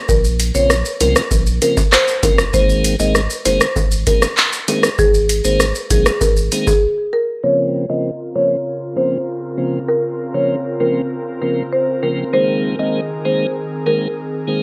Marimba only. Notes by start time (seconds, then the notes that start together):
0.09 A#4
0.55 C#5
1.01 A#4
1.62 A#4
1.93 C5
2.23 A#4
2.54 C5
3.00 D#5
3.45 C5
4.07 A#4
4.99 G#4
5.45 C5
5.91 G#4
6.21 A#4
6.67 G#4
7.13 A#4
7.44 C#5
7.90 D#5
8.36 C#5
8.97 C5
9.88 A#4
10.34 C#5
10.80 A#4
11.42 A#4
11.73 C5
12.03 A#4
12.34 C5
12.79 D#5
13.25 C5
13.87 A#4